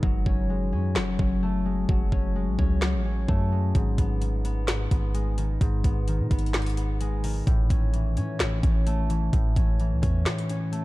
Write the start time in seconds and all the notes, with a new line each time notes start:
Already playing: B3
0.03 F#1 F#3, kick
0.26 F#1 C#4, kick
0.50 G#3
0.73 F#2 C#4
0.96 F#1 F#3, snare, clap
1.19 F#1 C#4, kick
1.43 A3
1.65 G#3
1.89 F#1 F#3, kick
2.12 F#1 C#4, kick
2.36 G#3
2.48 A1
2.59 C#2 C#4, kick
2.82 F#3, snare, clap
2.94 A1
3.05 C#4
3.28 F#2 A3, kick
3.52 G#3
3.75 G#1 G#2, kick, closed hi-hat
3.98 G#1 B3, kick, closed hi-hat
4.21 D#3, closed hi-hat
4.45 B3, closed hi-hat
4.68 G#2, snare, clap, closed hi-hat
4.91 G#1 B3, kick, closed hi-hat
5.14 G#3, closed hi-hat
5.38 D#3, closed hi-hat
5.61 G#1 G#2, kick, closed hi-hat
5.84 G#1 B3, kick, closed hi-hat
6.08 D#3, closed hi-hat
6.20 B2
6.31 G#1 B3, kick, closed hi-hat
6.39 closed hi-hat
6.46 closed hi-hat
6.54 G#2, snare, clap, closed hi-hat
6.62 closed hi-hat
6.66 closed hi-hat
6.70 closed hi-hat
6.77 B3, closed hi-hat
7.01 G#3, closed hi-hat
7.24 D#3, open hi-hat
7.47 A1 A2, kick, closed hi-hat
7.70 A1 C#4, kick, closed hi-hat
7.93 E3, closed hi-hat
8.17 A2 C#4, closed hi-hat
8.40 A1 A2, snare, clap, closed hi-hat
8.63 A1 C#4, kick, closed hi-hat
8.86 A3, closed hi-hat
9.09 E3, closed hi-hat
9.33 A1 A2, kick, closed hi-hat
9.56 A1 C#4, kick, closed hi-hat
9.80 E3, closed hi-hat
9.92 C#2
10.02 E2 C#4, kick, closed hi-hat
10.26 A2, snare, clap, closed hi-hat
10.38 closed hi-hat
10.49 C#4, closed hi-hat
10.72 A3, closed hi-hat